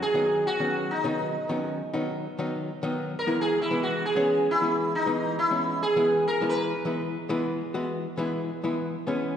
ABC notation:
X:1
M:7/4
L:1/16
Q:1/4=134
K:E
V:1 name="Sitar"
G4 F4 D12 z8 | ^A2 G2 E2 F2 G4 E4 D4 E4 G4 | ^A2 B12 z12 z2 |]
V:2 name="Hollow-body jazz guitar"
z [D,F,B,D]3 z [D,F,B,C]3 z [D,F,B,D]3 z [D,F,B,C]3 z [D,F,B,D]3 z [D,F,B,D]3 z [D,F,B,D]3 | z [E,G,B,E]3 z [E,G,B,E]3 z [E,G,B,C]3 z [E,G,B,E]3 z [E,G,B,D]3 z [E,G,B,C]3 z [E,G,B,E]3 | z [E,G,B,E]3 z [E,G,B,E]3 z [E,G,B,E]3 z [E,G,B,F]3 z [E,G,B,E]3 z [E,G,B,E]3 z [E,G,B,C]3 |]